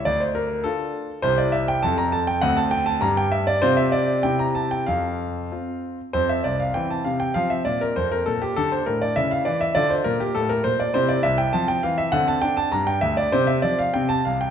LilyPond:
<<
  \new Staff \with { instrumentName = "Grand piano" } { \time 2/4 \key f \major \tempo 4 = 100 << { d''16 c''16 bes'8 a'4 | c''16 d''16 e''16 g''16 a''16 bes''16 a''16 g''16 | ges''16 a''16 g''16 a''16 bes''16 g''16 e''16 d''16 | c''16 e''16 d''8 g''16 bes''16 a''16 g''16 |
f''4. r8 | c''16 e''16 d''16 f''16 g''16 a''16 f''16 g''16 | f''16 e''16 d''16 bes'16 c''16 bes'16 a'16 g'16 | a'16 c''16 bes'16 d''16 fes''16 f''16 d''16 fes''16 |
d''16 c''16 bes'16 g'16 a'16 bes'16 c''16 d''16 | c''16 d''16 e''16 g''16 a''16 g''16 f''16 e''16 | fis''16 a''16 g''16 a''16 bes''16 g''16 e''16 d''16 | c''16 e''16 d''16 f''16 g''16 a''16 f''16 g''16 | } \\ { r2 | r2 | r2 | r2 |
r2 | c'4 c'4 | c'2 | d'4 fes'4 |
f'2 | e'4 c'4 | c'4 d'4 | c'4 c'4 | } >> }
  \new Staff \with { instrumentName = "Grand piano" } { \clef bass \time 2/4 \key f \major d,4 <d' f'>4 | <c, e' g'>4 <f, c' a'>4 | <d, c' a'>4 <g, d' g'>4 | <c c' f'>4 <c c' e'>4 |
f,4 <c' f'>4 | f,8 c,8 e8 c8 | f8 bes,8 f,8 bes,8 | d8 a,8 des8 fes8 |
d8 bes,8 a,8 bes,8 | c8 c,8 f8 e8 | d8 d'8 g,8 d,8 | c8 f8 c8 c,8 | }
>>